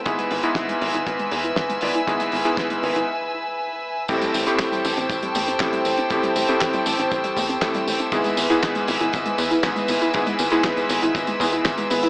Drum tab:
CC |----------------|----------------|x---------------|----------------|
HH |xxoxxxoxxxoxxxox|xxoxxxox--------|xxoxxxoxxxoxxxox|xxoxxxoxxxoxxxox|
TB |----------------|----------------|xxxxxxxxxxxxxxxx|xxxxxxxxxxxxxxxx|
CP |----------------|----------------|----x-------x---|----x-------x---|
SD |----o-------o---|----o-----------|----o-------o---|----o-------o---|
BD |o---o---o---o---|o---o-----------|o---o---o---o---|o---o---o-o-o---|

CC |----------------|----------------|
HH |xxoxxxoxxxoxxxox|xxoxxxoxxxoxxxox|
TB |xxxxxxxxxxxxxxxx|xxxxxxxxxxxxxxxx|
CP |----x-------x---|----x-------x---|
SD |----o-------o---|----o-------o---|
BD |o---o---o---o---|o---o---o-o-o---|